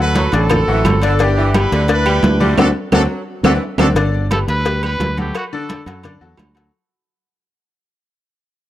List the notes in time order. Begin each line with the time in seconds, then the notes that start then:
Already playing: D2 F#4 A4
0.00 F#3 F#4 B4 F#5
0.15 F#3, cowbell, high conga, low timbale, low agogo
0.32 A1 D3 C4 D4 F#4 A4 D5, cowbell, high conga, low agogo
0.50 cowbell, high conga, low conga, low agogo, claves
0.68 A1 E3 F#3 F#4 F#5, high conga
0.84 G1, cowbell, high conga, low timbale, low agogo, claves
1.02 D3 D4 A4 D5, cowbell, high conga, low agogo
1.19 D3 B3 D4 E4 G4 D5, cowbell, high conga, low agogo
1.37 E3, high conga
1.54 G3 D4 E4 G4 B4 G5, cowbell, high conga, low timbale, low agogo, claves
1.72 D2 D3, cowbell, high conga
1.88 D3 D4 D5, cowbell, high conga, low agogo
1.92 E4 B4
2.06 G3 G4 G5, high conga, low agogo, claves
2.23 D2, cowbell, high conga, low timbale
2.40 D3 G3 A3 C4 D4 F#4 D5, high conga, low agogo
2.58 D2 C4 D4 F#4 A4, cowbell, high conga, high timbale, claves
2.92 D2 F#3 C4 D4 F#4 A4, cowbell, high conga, high timbale, claves
3.43 D2 E3 C4 D4 F#4 A4, cowbell, high conga, high timbale, claves
3.78 D2 D3 C4 D4 F#4 A4, cowbell, high conga, high timbale, claves
3.95 G1 D3 D4 D5, cowbell, high conga, low agogo
4.14 high conga
4.31 G3 G4 A4 B4, cowbell, high conga, low timbale, low agogo, claves
4.48 D2 B4, cowbell, high conga
4.65 G3 G4 B4, cowbell, high conga, low agogo
4.83 G3 G4 B4, high conga, low agogo, claves
5.00 D2, cowbell, high conga, low timbale
5.17 F#3 F#4 G4 A4, high conga, low agogo
5.35 F#4, cowbell, high conga, low agogo, claves
5.53 D3 D4 A4 D5, high conga
5.69 cowbell, high conga, low timbale, low agogo
5.86 F#2 F#3 F#4 A4, cowbell, high conga, low agogo
6.03 D3 D4 D5, cowbell, high conga, low conga, low agogo, claves
6.21 E2 F#3 F#4 A4, high conga
6.37 D2, cowbell, high conga, low timbale, low agogo, claves
6.55 F#3 F#4 A4, cowbell, low agogo